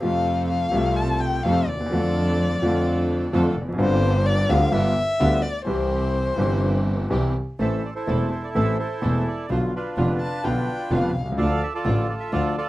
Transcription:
0.00 F2 C3 F3 A3 C4 F4 A4 F5
0.04 F4
0.49 F5
0.72 C2 C3 F3 A3 C4 F4 A4
0.76 F4
0.96 A5
1.20 G5
1.43 F2 C3 F3 A3 C4 F4 A4 F5
1.68 D#2 D5
1.74 D2
1.80 D#2
1.86 E2
1.91 F2 D3 F3 A3 D4 F4 A4
1.95 F4
2.61 F2 D3 F3 A3 D4 F4 A4
3.32 F2 D3 F3 A3 D4 F4 A4
3.57 F1
3.61 E2
3.68 F2
3.73 F#2 D3
3.78 G1 G2 G3 C4 F4 G4 C5
4.26 D5
4.49 D2 D3 G3 C4 F4 G4 F5
4.72 G1 G2 D3 G3 B3 F4 G4 E5
5.19 D2 D3 G3 B3 F4 G4
5.42 D5
5.65 C2 C3 E3 G3 C4 E4 G4 C5
6.36 G1 G2 E3 G3 C4 E4 G4
6.40 G4
7.10 C2 C3 E3 G3 C4 E4 G4
7.59 A1 A2 E3 A3 C4 E4 A4 C5 E5
7.85 D5
7.95 E4 A4 C5
8.07 E1 E2 E3 A3 C4 E4 A4
8.31 C5
8.44 D5
8.55 A1 A2 E3 A3 C4 E4 A4 C5 E5
8.79 E4 A4 C5
9.01 E1 E2 E3 A3 C4 E4 A4
9.28 D5
9.49 B1 B2 D3 F3 B3 D4 F4 C5
9.76 D4 F4 B4
9.97 F1 F2 D3 F3 B3 D4 F4
10.21 A5
10.44 B1 B2 D3 F3 B3 D4 F4 G5
10.90 F1 F2 D3 F3 B3 D4 F4 F5
11.15 C2
11.21 B1
11.25 C2
11.32 C#2
11.37 D2 D3 F3 A3 D4 F4 A4 D5 F5
11.63 E5
11.74 F4 A4 D5
11.84 A1 A2 D3 F3 A3 D4 F4
12.10 D5
12.20 E5
12.32 D2 D3 F3 A3 D4 F4 A4 D5 F5
12.57 F4 A4 D5

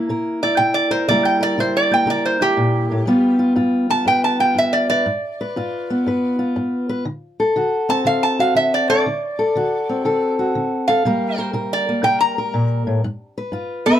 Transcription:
Already playing: A#3 E4
0.09 C3 A#4
0.43 E4 D5
0.57 C3 G5
0.74 D5
0.91 A#4 C5
1.08 C#3 G3 A#3 E4 A#4 D5
1.25 G5
1.41 A#4 D5
1.58 C#3 E4 C5
1.77 D5
1.91 A#3 G5
2.06 C#3 A#4
2.10 D5
2.26 C5
2.41 E4 G4
2.57 A#2
2.91 A2
3.06 G2 G3 B3 F4
3.39 F4
3.56 G2 F4
3.90 B3 A5
4.05 G2 B4 G5
4.24 A5
4.40 F4 G5
4.55 G2 E5
4.73 D5
4.90 B4 D5
5.06 G2
5.41 B4
5.56 G2 F4
5.90 B3
6.06 G2 B4
6.39 F4
6.56 G2
6.89 B4
7.05 D3
7.40 A4
7.56 D3 F#4
7.89 C4 A5
8.05 D3 A4 F5
8.23 A5
8.39 F#4 F5
8.55 D3 E5
8.74 D5
8.89 A4 D5
9.06 D3
9.39 A4
9.55 D3 F#4
9.89 C4
10.05 D3 A4
10.39 F#4
10.55 D3
10.88 A4 F5
11.05 C3 G3 A#3 A#4
11.38 A#4 C5
11.53 C3 A#4
11.73 D5
11.89 A#3
12.03 C3 A#4 G5
12.21 A#5
12.38 A#4
12.54 A#2
12.87 A2
13.04 G2
13.38 B4
13.52 G2 F4
13.86 B3 B4 E5

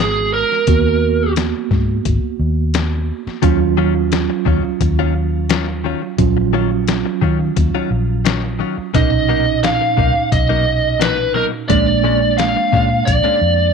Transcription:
Already playing: G#1 G#3 B3 F#4
0.00 G#4
0.34 A#4
0.52 snare
0.67 D#2 A#3 B3 F#4, kick, closed hi-hat
1.36 snare, closed hi-hat
1.71 G#2, kick, snare
2.05 G#1, kick, closed hi-hat
2.23 muted fingered electric bass stroke
2.39 D#2
2.74 snare, closed hi-hat
3.27 muted fingered electric bass stroke, snare
3.42 D#2 D#3 F#3 C#4 F4, kick, closed hi-hat
3.61 muted clean electric guitar stroke
3.77 D#3 F#3 C#4 F4
3.95 muted clean electric guitar stroke
4.12 snare, closed hi-hat
4.30 muted clean electric guitar stroke
4.45 D#2 D#3 F#3 C#4 F4, kick
4.64 muted fingered electric bass stroke, muted clean electric guitar stroke
4.80 D#2, muted clean electric guitar stroke, kick, closed hi-hat
4.99 D#3 F#3 C#4 F4
5.15 muted clean electric guitar stroke
5.50 D#3 F#3 C#4 F4, snare, closed hi-hat
5.68 muted clean electric guitar stroke
5.84 D#3 F#3 C#4 F4
6.02 muted clean electric guitar stroke
6.18 A#1 F#3 C#4 F4, kick, closed hi-hat
6.37 muted clean electric guitar stroke
6.53 D#3 F#3 C#4 F4
6.71 muted clean electric guitar stroke
6.88 snare, closed hi-hat
7.06 muted clean electric guitar stroke
7.21 D#3 F#3 C#4 F4, kick
7.40 muted clean electric guitar stroke
7.56 D#2, muted clean electric guitar stroke, kick, closed hi-hat
7.74 D#3 F#3 C#4 F4, muted fingered electric bass stroke
7.91 A#1, muted clean electric guitar stroke
8.25 D#3 F#3 C#4 F4, snare, closed hi-hat
8.43 muted clean electric guitar stroke
8.59 D#3 F#3 C#4 F4
8.77 muted clean electric guitar stroke, muted fingered electric bass stroke
8.94 B1 A#2 B2 F#3 A#3 C#4 D#4 D#5, kick, closed hi-hat
9.12 muted clean electric guitar stroke
9.28 B2 F#3 A#3 D#4
9.47 muted clean electric guitar stroke
9.63 F5, snare, closed hi-hat
9.81 muted clean electric guitar stroke
9.97 B1 B2 F#3 A#3 D#4, kick
10.15 muted clean electric guitar stroke, muted fingered electric bass stroke
10.32 B1 D#5, muted clean electric guitar stroke, kick, closed hi-hat
10.49 B2 F#3 A#3 D#4
10.66 muted clean electric guitar stroke
11.00 B2 F#3 A#3 D#4 B4, snare, closed hi-hat
11.18 muted clean electric guitar stroke
11.34 B2 F#3 A#3 D#4 A#4
11.53 muted clean electric guitar stroke
11.68 A#1 A#2 G#3 A#3 C#4 D4 D5, kick, closed hi-hat
11.88 muted clean electric guitar stroke
12.04 A#2 G#3 C#4 D4
12.22 muted clean electric guitar stroke
12.38 F5, snare, closed hi-hat
12.56 muted clean electric guitar stroke
12.72 A#2 G#3 C#4 D4, kick, snare
12.90 muted clean electric guitar stroke
13.05 A#1 D5, muted clean electric guitar stroke, kick, closed hi-hat
13.24 A#2 G#3 C#4 D4
13.41 F2, muted clean electric guitar stroke

